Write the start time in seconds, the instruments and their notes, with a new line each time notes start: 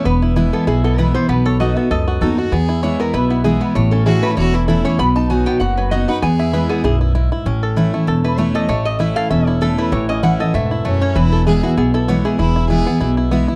0.05 upright bass E1, steel-string acoustic guitar E2, five-string banjo B3, resonator guitar played with a steel bar B4
0.22 five-string banjo E4
0.36 steel-string acoustic guitar E3 G#3 B3 E4, five-string banjo E4
0.53 five-string banjo B3, resonator guitar played with a steel bar A4
0.67 upright bass B1, steel-string acoustic guitar B2, five-string banjo E4, resonator guitar played with a steel bar G#4
0.84 five-string banjo B3, resonator guitar played with a steel bar A4
0.98 steel-string acoustic guitar E3 G#3 B3 E4, five-string banjo E4, resonator guitar played with a steel bar B4
1.14 five-string banjo B3, steel-string acoustic guitar B3 E4, resonator guitar played with a steel bar C5
1.28 upright bass B1, steel-string acoustic guitar B2, five-string banjo B3, resonator guitar played with a steel bar B4
1.46 five-string banjo A4, resonator guitar played with a steel bar C#5
1.60 steel-string acoustic guitar F#3 B3 D#4 F#4, five-string banjo F#4, resonator guitar played with a steel bar D#5
1.76 five-string banjo B3, steel-string acoustic guitar D#4 F#4, resonator guitar played with a steel bar E5
1.91 upright bass C#2, steel-string acoustic guitar F#2, five-string banjo A4, resonator guitar played with a steel bar D#5
2.08 five-string banjo F#4
2.21 upright bass D#2, steel-string acoustic guitar F#3 B3 D#4 F#4, fiddle D#4, five-string banjo A4
2.38 steel-string acoustic guitar D#4 F#4, fiddle F#4, five-string banjo F#4
2.52 upright bass E2, steel-string acoustic guitar E2, five-string banjo B3, fiddle G#4
2.69 five-string banjo E4
2.83 steel-string acoustic guitar E3 G#3 B3 E4, five-string banjo E4, resonator guitar played with a steel bar C#5
3.00 five-string banjo B3, resonator guitar played with a steel bar A#4
3.14 upright bass B1, steel-string acoustic guitar B2, five-string banjo E4, resonator guitar played with a steel bar B4
3.30 five-string banjo B3, resonator guitar played with a steel bar E4
3.44 steel-string acoustic guitar E3 G#3 B3 E4, five-string banjo E4, resonator guitar played with a steel bar G#4
3.61 five-string banjo B3, resonator guitar played with a steel bar B4
3.75 upright bass A1, steel-string acoustic guitar A2, five-string banjo A3, resonator guitar played with a steel bar C#5
3.91 five-string banjo C#4, resonator guitar played with a steel bar A4
4.06 steel-string acoustic guitar E3 A3 C#4 E4, five-string banjo E4, fiddle F#4, resonator guitar played with a steel bar G#4
4.23 five-string banjo A3, resonator guitar played with a steel bar B4
4.31 fiddle E4
4.37 upright bass E1, steel-string acoustic guitar E2, five-string banjo E4, fiddle F#4, resonator guitar played with a steel bar C#5
4.54 five-string banjo E3, resonator guitar played with a steel bar E4, fiddle E4
4.68 steel-string acoustic guitar E3 A3 C#4 E4, five-string banjo E4, fiddle E4, resonator guitar played with a steel bar A4
4.85 five-string banjo C#4, resonator guitar played with a steel bar C#5
4.99 upright bass B1, steel-string acoustic guitar B2, five-string banjo B3, resonator guitar played with a steel bar B5
5.16 five-string banjo D#4, resonator guitar played with a steel bar A5
5.30 steel-string acoustic guitar F#3 B3 D#4 F#4, five-string banjo F#4, resonator guitar played with a steel bar G#5
5.46 five-string banjo B3, resonator guitar played with a steel bar G5
5.60 upright bass F#1, steel-string acoustic guitar F#2, five-string banjo F#4, resonator guitar played with a steel bar F#5
5.77 five-string banjo F#3, resonator guitar played with a steel bar B4
5.91 steel-string acoustic guitar F#3 B3 D#4 F#4, five-string banjo F#4, resonator guitar played with a steel bar D#5
6.08 five-string banjo D#4, steel-string acoustic guitar D#4 F#4, fiddle B4, resonator guitar played with a steel bar F#5
6.22 upright bass E2, steel-string acoustic guitar E2, five-string banjo B3, fiddle G#4, resonator guitar played with a steel bar G#5
6.39 five-string banjo E4, resonator guitar played with a steel bar E5
6.53 steel-string acoustic guitar E3 G#3 B3 E4, five-string banjo E4, resonator guitar played with a steel bar B4
6.69 five-string banjo B3, resonator guitar played with a steel bar G#4
6.84 upright bass B1, steel-string acoustic guitar F#2, five-string banjo E4, resonator guitar played with a steel bar G#4
7.01 five-string banjo E4
7.15 steel-string acoustic guitar G#2, five-string banjo E4
7.32 five-string banjo E4
7.46 upright bass A1, steel-string acoustic guitar A2, five-string banjo C#4
7.63 five-string banjo A4
7.76 steel-string acoustic guitar E3 A3 C#4 E4, five-string banjo E4
7.93 five-string banjo A3, steel-string acoustic guitar C#4 E4
8.07 upright bass E1, steel-string acoustic guitar E2, five-string banjo A4
8.24 five-string banjo E4, resonator guitar played with a steel bar B4
8.38 steel-string acoustic guitar E3 A3 C#4 E4, five-string banjo A3, resonator guitar played with a steel bar C#5
8.55 five-string banjo A4, resonator guitar played with a steel bar D#5
8.69 upright bass A1, steel-string acoustic guitar A2, five-string banjo A3, resonator guitar played with a steel bar C#5
8.85 resonator guitar played with a steel bar D#5
8.99 steel-string acoustic guitar E3 A3 C#4 E4, five-string banjo E4, resonator guitar played with a steel bar E5
9.16 five-string banjo A4, resonator guitar played with a steel bar F5
9.30 upright bass E1, steel-string acoustic guitar E2, five-string banjo C#4, resonator guitar played with a steel bar E5
9.47 five-string banjo E4, resonator guitar played with a steel bar C#5
9.61 steel-string acoustic guitar E3 A3 C#4 E4, resonator guitar played with a steel bar A4, five-string banjo A4
9.78 five-string banjo E4, resonator guitar played with a steel bar B4
9.92 upright bass A1, steel-string acoustic guitar A2, five-string banjo E3, resonator guitar played with a steel bar C#5
10.09 five-string banjo C#4, resonator guitar played with a steel bar D#5
10.23 steel-string acoustic guitar E3 A3 C#4 E4, five-string banjo E4, resonator guitar played with a steel bar F#5
10.40 steel-string acoustic guitar C#4 E4, five-string banjo A4, resonator guitar played with a steel bar D#5
10.54 upright bass E1, steel-string acoustic guitar G#2, five-string banjo A3, resonator guitar played with a steel bar E5
10.71 five-string banjo E4
10.85 steel-string acoustic guitar F#2, five-string banjo A3, fiddle C#4
11.01 five-string banjo C#4, resonator guitar played with a steel bar C#5
11.15 upright bass E1, steel-string acoustic guitar E2, five-string banjo E3, fiddle E4, resonator guitar played with a steel bar B4
11.32 resonator guitar played with a steel bar A4
11.47 steel-string acoustic guitar E3 G#3 B3 E4, five-string banjo E4, fiddle G#4, resonator guitar played with a steel bar G#4
11.63 steel-string acoustic guitar B3 E4, five-string banjo E4, resonator guitar played with a steel bar F#4
11.77 upright bass B1, steel-string acoustic guitar B2, five-string banjo B3, resonator guitar played with a steel bar G#4
11.94 five-string banjo E4, resonator guitar played with a steel bar A4
12.08 steel-string acoustic guitar E3 G#3 B3 E4, five-string banjo B3, resonator guitar played with a steel bar C#5
12.25 five-string banjo E4, resonator guitar played with a steel bar G#4
12.39 upright bass E1, steel-string acoustic guitar E2, fiddle E4, five-string banjo E4
12.56 five-string banjo E4
12.69 steel-string acoustic guitar E3 G#3 B3 E4, five-string banjo E4, fiddle G#4
12.86 five-string banjo B3, steel-string acoustic guitar B3 E4
13.01 upright bass B1, steel-string acoustic guitar B2, five-string banjo E4
13.17 five-string banjo E4
13.31 steel-string acoustic guitar E3 G#3 B3 E4, five-string banjo B3
13.48 steel-string acoustic guitar B3 E4, five-string banjo E4